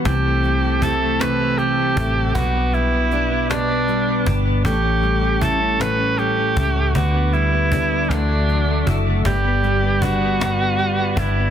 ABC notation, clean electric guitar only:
X:1
M:6/8
L:1/16
Q:3/8=52
K:G
V:1 name="Clean electric guitar"
C, A, G, A, E A, C, A, G, A, E A, | B,, B, G, B, D B, B,, B, G, B, D B, | A,, ^C G, C E C A,, C G, C E C | D, B, G, B, D B, D, A, F, A, E A, |
G,, B, G, B, D B, G,, B, G, B, D B, |]